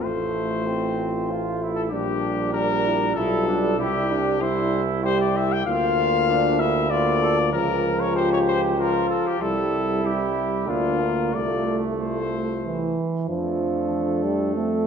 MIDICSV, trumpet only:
0, 0, Header, 1, 2, 480
1, 0, Start_track
1, 0, Key_signature, -1, "major"
1, 0, Tempo, 626305
1, 21, Time_signature, 3, 2, 24, 8
1, 7701, Tempo, 650759
1, 10101, Tempo, 633580
1, 11288, End_track
2, 0, Start_track
2, 0, Title_t, "Trumpet"
2, 0, Program_c, 0, 56
2, 20, Note_on_c, 0, 72, 67
2, 1332, Note_off_c, 0, 72, 0
2, 1337, Note_on_c, 0, 69, 66
2, 1393, Note_off_c, 0, 69, 0
2, 1452, Note_on_c, 0, 67, 61
2, 1930, Note_off_c, 0, 67, 0
2, 1937, Note_on_c, 0, 70, 84
2, 2410, Note_off_c, 0, 70, 0
2, 2418, Note_on_c, 0, 69, 76
2, 2890, Note_off_c, 0, 69, 0
2, 2902, Note_on_c, 0, 67, 74
2, 3386, Note_on_c, 0, 72, 80
2, 3398, Note_off_c, 0, 67, 0
2, 3702, Note_off_c, 0, 72, 0
2, 3866, Note_on_c, 0, 72, 85
2, 3980, Note_off_c, 0, 72, 0
2, 3991, Note_on_c, 0, 74, 72
2, 4112, Note_on_c, 0, 76, 83
2, 4124, Note_off_c, 0, 74, 0
2, 4235, Note_on_c, 0, 79, 83
2, 4246, Note_off_c, 0, 76, 0
2, 4335, Note_off_c, 0, 79, 0
2, 4339, Note_on_c, 0, 77, 94
2, 5055, Note_on_c, 0, 76, 80
2, 5066, Note_off_c, 0, 77, 0
2, 5292, Note_on_c, 0, 74, 91
2, 5303, Note_off_c, 0, 76, 0
2, 5765, Note_off_c, 0, 74, 0
2, 5769, Note_on_c, 0, 70, 79
2, 6132, Note_on_c, 0, 73, 70
2, 6144, Note_off_c, 0, 70, 0
2, 6249, Note_off_c, 0, 73, 0
2, 6254, Note_on_c, 0, 72, 89
2, 6371, Note_off_c, 0, 72, 0
2, 6378, Note_on_c, 0, 73, 75
2, 6431, Note_off_c, 0, 73, 0
2, 6494, Note_on_c, 0, 72, 74
2, 6602, Note_off_c, 0, 72, 0
2, 6737, Note_on_c, 0, 70, 76
2, 6966, Note_off_c, 0, 70, 0
2, 6971, Note_on_c, 0, 69, 65
2, 7103, Note_on_c, 0, 67, 71
2, 7115, Note_off_c, 0, 69, 0
2, 7218, Note_on_c, 0, 69, 76
2, 7230, Note_off_c, 0, 67, 0
2, 7708, Note_on_c, 0, 67, 65
2, 7719, Note_off_c, 0, 69, 0
2, 8168, Note_off_c, 0, 67, 0
2, 8173, Note_on_c, 0, 65, 71
2, 8657, Note_on_c, 0, 74, 67
2, 8668, Note_off_c, 0, 65, 0
2, 8971, Note_off_c, 0, 74, 0
2, 9145, Note_on_c, 0, 72, 62
2, 9833, Note_off_c, 0, 72, 0
2, 10102, Note_on_c, 0, 69, 41
2, 11288, Note_off_c, 0, 69, 0
2, 11288, End_track
0, 0, End_of_file